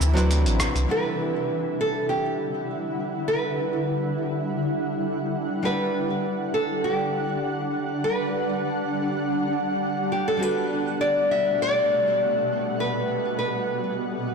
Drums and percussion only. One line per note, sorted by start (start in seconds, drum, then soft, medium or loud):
0.01 cabasa medium
0.17 closed hi-hat soft
0.17 cabasa soft
0.31 closed hi-hat medium
0.31 cabasa soft
0.46 closed hi-hat soft
0.46 cabasa soft
0.60 kick medium
0.60 cross-stick medium
0.60 cabasa medium
0.76 closed hi-hat soft
0.76 cabasa soft